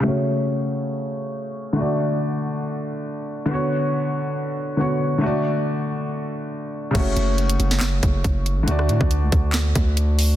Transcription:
<<
  \new Staff \with { instrumentName = "Grand piano" } { \time 4/4 \key fis \minor \tempo 4 = 139 <cis a fis' cis''>1 | <d a fis' d''>1 | <d b fis' cis''>2. <d b fis' cis''>4 | <d a fis' d''>1 |
<cis a fis' cis''>1 | <d a fis' d''>1 | }
  \new Staff \with { instrumentName = "808-style bass" } { \clef bass \time 4/4 \key fis \minor r1 | r1 | r1 | r1 |
fis,,8 fis,,4 fis,,4 fis,,8 fis,,8. a,,16 | d,8 a,16 d,8 cis,16 d,4 d,4. | }
  \new DrumStaff \with { instrumentName = "Drums" } \drummode { \time 4/4 r4 r4 r4 r4 | r4 r4 r4 r4 | r4 r4 r4 r4 | r4 r4 r4 r4 |
<cymc hh bd>8 hh8 hh16 hh16 hh16 sn16 <hc hh sn>8 <hh bd>8 <hh bd>8 hh8 | hh16 ss16 hh16 bd16 hh8 <hh bd>8 <hc hh sn>8 <hh bd>8 hh8 hho8 | }
>>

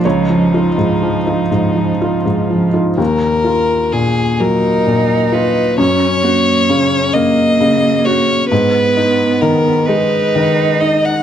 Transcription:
<<
  \new Staff \with { instrumentName = "Violin" } { \time 6/8 \key ees \minor \tempo 4. = 43 ees'2. | bes'4 aes'8 bes'4 ces''8 | des''4. ees''4 des''8 | ces''4 bes'8 ces''4 ees''16 ges''16 | }
  \new Staff \with { instrumentName = "Cello" } { \time 6/8 \key ees \minor f2. | r4. ees'4. | des'8 bes8 des'8 bes4. | ces'4. ees'4. | }
  \new Staff \with { instrumentName = "Felt piano" } { \time 6/8 \key ees \minor des''4. r4. | r2. | r2. | r2. | }
  \new Staff \with { instrumentName = "Felt piano" } { \clef bass \time 6/8 \key ees \minor des,16 f16 <ees' f'>16 aes,16 f16 <ees' f'>16 aes,16 f16 <ees' f'>16 aes,16 f16 <ees' f'>16 | ees,8 f'8 bes,8 ges8 bes,8 f'8 | ges,8 ges'8 des8 bes8 des8 ges'8 | aes,8 ees'8 ees8 aes8 ees8 ees'8 | }
>>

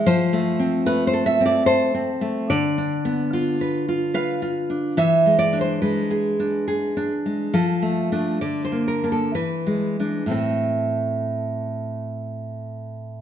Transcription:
\new Staff \with { instrumentName = "Nylon-string guitar" } { \time 3/4 \key a \minor \tempo 4 = 70 << { c''4 b'16 c''16 e''16 d''16 c''4 | d''2 f''4 | e''8 d''16 c''16 b'4 r4 | a'4 d''16 c''16 bes'16 a'16 b'4 |
a'2 r4 | } \\ { \tuplet 3/2 { f8 a8 c'8 a8 a'8 c'8 a'8 c'8 a8 } | \tuplet 3/2 { d8 d'8 b8 f'8 b'8 f'8 b'8 f'8 d'8 } | \tuplet 3/2 { e8 gis8 d'8 gis8 gis'8 d'8 gis'8 d'8 gis8 } | \tuplet 3/2 { f8 a8 <a d'>8 d8 bes8 <bes d'>8 e8 gis8 <gis d'>8 } |
<a, a c'>2. | } >> }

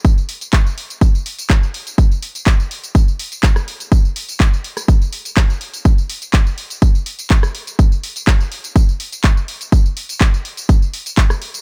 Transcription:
\new DrumStaff \with { instrumentName = "Drums" } \drummode { \time 4/4 \tempo 4 = 124 <hh bd tamb>16 tamb16 hho16 <hh tamb>16 <hc hh bd tamb>16 tamb16 hho16 <hh tamb>16 <hh bd tamb>16 tamb16 hho16 <hh tamb>16 <hc hh bd tamb>16 tamb16 hho16 <hh tamb>16 | <hh bd tamb>16 tamb16 hho16 <hh tamb>16 <hc hh bd tamb>16 tamb16 hho16 <hh tamb>16 <hh bd tamb>16 tamb16 hho16 <hh tamb>16 <hc hh bd tamb>16 <ss tamb>16 hho16 <hh tamb>16 | <hh bd tamb>16 tamb16 hho16 <hh tamb>16 <hc hh bd tamb>16 tamb16 hho16 <hh ss tamb>16 <hh bd tamb>16 tamb16 hho16 <hh tamb>16 <hc hh bd tamb>16 tamb16 hho16 <hh tamb>16 | <hh bd tamb>16 tamb16 hho16 <hh tamb>16 <hc hh bd tamb>16 tamb16 hho16 <hh tamb>16 <hh bd tamb>16 tamb16 hho16 <hh tamb>16 <hc hh bd tamb>16 <ss tamb>16 hho16 <hh tamb>16 |
<hh bd tamb>16 tamb16 hho16 <hh tamb>16 <hc hh bd tamb>16 tamb16 hho16 <hh tamb>16 <hh bd tamb>16 tamb16 hho16 <hh tamb>16 <hc hh bd tamb>16 tamb16 hho16 <hh tamb>16 | <hh bd tamb>16 tamb16 hho16 <hh tamb>16 <hc hh bd tamb>16 tamb16 hho16 <hh tamb>16 <hh bd tamb>16 tamb16 hho16 <hh tamb>16 <hc hh bd tamb>16 <ss tamb>16 hho16 <hh tamb>16 | }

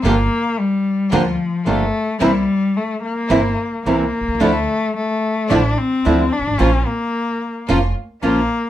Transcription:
<<
  \new Staff \with { instrumentName = "String section" } { \time 4/4 \key c \mixolydian \tempo 4 = 110 <g bes f'>8 r4. <g bes f'>8 r8 <g bes f'>8 r8 | <bes c' e'>8 r4. <bes c' e'>8 r8 <bes c' e'>8 r8 | <f d' e'>8 r4. <f d' e'>8 r8 <f d' e'>8 r8 | <bes des' f'>8 r4. <bes des' f'>8 r8 <bes des' f'>8 r8 | }
  \new Staff \with { instrumentName = "Cello" } { \time 4/4 \key c \mixolydian bes4 g4 f4 a4 | g4 a8 bes4. bes4 | a4 a4 d'8 c'4 d'8 | des'8 bes4. r4 bes4 | }
  \new Staff \with { instrumentName = "Nylon-string guitar" } { \time 4/4 \key c \mixolydian <d f bes d' g'>8 r4. <d f bes d' g'>8 r8 <d f bes d' g'>8 r8 | <c e bes c' e'>8 r4. <c e bes c' e'>8 r8 <c e bes c' e'>8 r8 | <d f a d' e'>8 r4. <d f a d' e'>8 r8 <d f a d' e'>8 r8 | <f bes des' f'>8 r4. <f bes des' f'>8 r8 <f bes des' f'>8 r8 | }
  \new Staff \with { instrumentName = "Upright bass" } { \clef bass \time 4/4 \key c \mixolydian g,,16. r4. r32 d,16. r8 r32 g,,16. r8 r32 | c,16. r4. r32 g,,16. r8 r32 c,16. r16 b,,32 c,32 des,32 | d,16. r4. r32 a,,16. r8 r32 d,16. r16 g,,32 aes,,32 a,,32 | bes,,16. r4. r32 f,,16. r8 r32 bes,,16. r8 r32 | }
>>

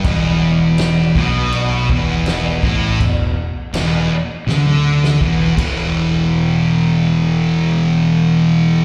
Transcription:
<<
  \new Staff \with { instrumentName = "Distorted electric guitar" } { \clef bass \time 4/4 \key c \lydian \tempo 4 = 82 e,4. b,4 e,4 a,8 | e,8 r8 e,8 r8 d4 e,8 <e, b, e>8~ | <e, b, e>1 | }
  \new Staff \with { instrumentName = "Fingered electric bass" } { \clef bass \time 4/4 \key c \lydian e,,4. b,,4 e,,4 a,,8 | e,,8 r8 e,,8 r8 d,4 e,,8 e,,8~ | e,,1 | }
  \new DrumStaff \with { instrumentName = "Drums" } \drummode { \time 4/4 <cymc bd>4 <cymc sn>8 bd8 cymc8 bd8 <cymc sn>8 bd8 | <cymc bd>4 <cymc sn>4 sn16 tommh8 sn16 bd8 <cymc bd>8 | r4 r4 r4 r4 | }
>>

